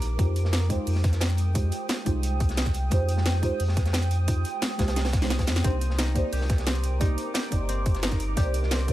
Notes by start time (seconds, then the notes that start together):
Already playing: A#1 A#3 D4 D#4 G4 A#4 C5 D6
0.02 closed hi-hat
0.17 F2 G#3 D#4 F4 G4 C5 G5 D#6, kick, closed hi-hat
0.36 closed hi-hat
0.45 snare
0.53 snare, closed hi-hat
0.69 G#3 D#4 F4 G4 C5, kick, closed hi-hat
0.87 F2, closed hi-hat, open hi-hat
0.95 snare
1.04 kick, snare, closed hi-hat
1.12 snare, closed hi-hat
1.21 snare, closed hi-hat
1.30 closed hi-hat
1.37 closed hi-hat
1.54 G#3 D#4 F4 G4 C5, kick, closed hi-hat
1.72 closed hi-hat
1.89 snare, closed hi-hat
2.05 C2 G#3 D#4 F4 G4 C5, kick, closed hi-hat
2.23 closed hi-hat
2.40 kick, closed hi-hat
2.49 snare, closed hi-hat
2.57 snare, closed hi-hat
2.66 kick, snare, closed hi-hat
2.74 closed hi-hat
2.90 F2 G#3 D#4 F4 G4 C5, kick, closed hi-hat
3.09 closed hi-hat
3.17 snare
3.26 snare, closed hi-hat
3.41 G#3 D#4 F4 G4 C5, kick, closed hi-hat
3.60 F2, closed hi-hat, open hi-hat
3.68 snare
3.77 kick, snare, closed hi-hat
3.86 snare, closed hi-hat
3.93 snare, closed hi-hat
4.02 closed hi-hat
4.11 closed hi-hat
4.26 G#3 D#4 F4 G4 C5, kick, closed hi-hat
4.45 closed hi-hat
4.62 snare, closed hi-hat
4.78 C2 G#3 D#4 F4 G4 C5, kick, snare, closed hi-hat
4.88 snare, closed hi-hat
4.96 snare, closed hi-hat
5.05 snare, closed hi-hat
5.13 kick, snare, closed hi-hat
5.20 G#3 D#4 F4 G4 C5, snare, closed hi-hat
5.30 snare, closed hi-hat
5.39 kick, snare, closed hi-hat
5.47 F2, snare, closed hi-hat
5.56 snare, closed hi-hat
5.63 C2 A#3 C4 D4 D#4 G4 A#4 C5 D6, kick, closed hi-hat
5.81 closed hi-hat
5.90 snare
5.98 D#4, snare, closed hi-hat
6.14 A#3 D#4 G4 C5 D5, kick, closed hi-hat
6.32 C2 G4, closed hi-hat, open hi-hat
6.41 snare
6.49 kick, snare, closed hi-hat
6.58 snare, closed hi-hat
6.67 C4, snare, closed hi-hat
6.75 closed hi-hat
6.84 closed hi-hat
6.99 A#3 D#4 G4 C5 D5, kick, closed hi-hat
7.18 closed hi-hat
7.34 G4, snare, closed hi-hat
7.50 G1 A#3 D#4 G4 C5 D5, kick, closed hi-hat
7.69 C4, closed hi-hat
7.86 kick, closed hi-hat
7.95 snare, closed hi-hat
8.03 D#4, snare, closed hi-hat
8.12 kick, snare, closed hi-hat
8.20 closed hi-hat
8.36 C2 A#3 D#4 G4 C5 D5, kick, closed hi-hat
8.54 closed hi-hat
8.63 snare
8.71 C4, snare, closed hi-hat
8.87 A#3 D#4 G4 D5, kick, closed hi-hat